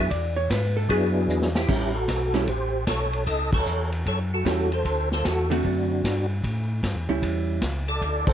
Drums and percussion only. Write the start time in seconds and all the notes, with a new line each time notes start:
0.11 kick, ride
0.50 kick, snare, hi-hat pedal, ride
0.89 kick, ride
1.29 hi-hat pedal
1.42 snare
1.55 snare
1.69 kick, crash
2.08 kick, snare, hi-hat pedal, ride
2.33 snare, ride
2.47 kick, ride
2.87 kick, snare, hi-hat pedal, ride
3.13 ride
3.27 kick, ride
3.53 kick, crash
3.66 hi-hat pedal
3.92 ride
4.06 kick, ride
4.46 kick, snare, hi-hat pedal, ride
4.72 ride
4.85 kick, ride
5.12 snare
5.25 kick, snare, hi-hat pedal, ride
5.51 ride
5.65 kick
6.04 kick, snare, hi-hat pedal, ride
6.44 kick, ride
6.83 kick, snare, hi-hat pedal, ride
7.22 kick, ride
7.61 kick, snare, hi-hat pedal, ride
7.88 ride
8.01 kick, ride
8.27 kick, crash